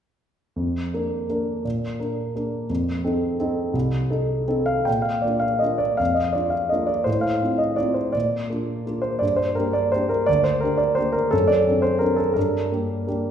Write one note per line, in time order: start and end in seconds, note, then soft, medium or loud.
0.56 0.91 F2 soft
0.94 1.26 A#3 soft
0.94 1.26 D4 soft
0.94 1.26 A#4 soft
1.29 1.61 A#3 soft
1.29 1.61 D4 soft
1.29 1.62 A#4 soft
1.65 1.99 A#2 soft
1.99 2.31 D4 soft
1.99 2.32 A#4 soft
2.35 2.66 A#3 soft
2.35 2.66 D4 soft
2.35 2.67 A#4 soft
2.70 3.03 F2 soft
3.04 3.36 C4 soft
3.04 3.36 D#4 soft
3.04 3.36 A4 soft
3.40 3.71 C4 soft
3.40 3.71 D#4 soft
3.40 3.71 A4 soft
3.73 4.08 C2 soft
4.10 4.45 D#4 soft
4.10 4.45 A4 soft
4.48 4.83 C4 soft
4.48 4.83 D#4 soft
4.48 4.83 A4 soft
4.66 4.86 F5 medium
4.85 5.23 A#2 soft
4.85 5.04 G5 medium
5.02 5.22 F5 medium
5.22 5.58 A#3 soft
5.22 5.58 D4 soft
5.22 5.59 F4 soft
5.22 5.42 D5 medium
5.40 5.60 F5 medium
5.59 5.95 A#3 soft
5.59 5.95 D4 soft
5.59 5.96 F4 soft
5.59 5.80 D#5 medium
5.78 5.98 D5 medium
5.97 6.35 F2 soft
5.97 6.16 F5 medium
6.14 6.34 D#5 soft
6.33 6.68 D4 soft
6.33 6.68 F4 soft
6.33 6.52 D5 medium
6.50 6.70 F5 soft
6.69 7.04 A#3 soft
6.69 7.04 D4 soft
6.69 7.04 F4 soft
6.69 6.89 D#5 medium
6.87 7.06 D5 medium
7.04 7.41 A2 soft
7.04 7.23 C5 medium
7.21 7.59 F5 medium
7.42 7.75 C4 soft
7.42 7.75 D#4 soft
7.42 7.76 F4 soft
7.58 7.78 D#5 medium
7.76 8.10 C4 soft
7.76 8.11 D#4 soft
7.76 8.11 F4 soft
7.76 7.96 D5 medium
7.94 8.13 C5 soft
8.12 8.49 A#2 soft
8.12 8.85 D5 medium
8.50 8.82 A#3 soft
8.50 8.83 D4 soft
8.50 8.83 F4 soft
8.86 9.19 A#3 soft
8.86 9.19 D4 soft
8.86 9.19 F4 soft
9.02 9.21 C5 medium
9.19 9.56 G2 soft
9.19 9.38 D5 medium
9.36 9.56 C5 medium
9.55 9.90 A#3 soft
9.55 9.90 D4 soft
9.55 9.90 G4 soft
9.55 9.74 A#4 medium
9.73 9.92 D5 medium
9.92 10.25 A#3 soft
9.92 10.25 D4 soft
9.92 10.25 G4 soft
9.92 10.10 C5 medium
10.09 10.27 A#4 medium
10.26 10.62 D2 soft
10.26 10.44 D5 medium
10.44 10.62 C5 medium
10.60 10.95 D4 soft
10.60 10.95 G4 soft
10.60 10.79 A#4 medium
10.77 10.97 D5 medium
10.95 11.28 A#3 soft
10.95 11.29 D4 soft
10.95 11.29 G4 soft
10.95 11.14 C5 medium
11.12 11.31 A#4 medium
11.31 11.66 F#2 soft
11.31 11.48 A4 medium
11.48 11.83 D5 medium
11.67 11.98 C4 soft
11.67 11.98 D4 soft
11.67 11.99 A4 soft
11.82 12.01 C5 medium
11.99 12.32 C4 soft
11.99 12.33 D4 soft
11.99 12.15 A4 soft
11.99 12.18 A#4 medium
12.16 12.35 A4 medium
12.33 12.70 G2 medium
12.33 13.06 A#4 medium
12.72 13.04 A#3 soft
12.72 13.04 D4 soft
12.72 13.04 G4 soft
13.07 13.31 A#3 soft
13.07 13.31 D4 soft
13.07 13.31 G4 soft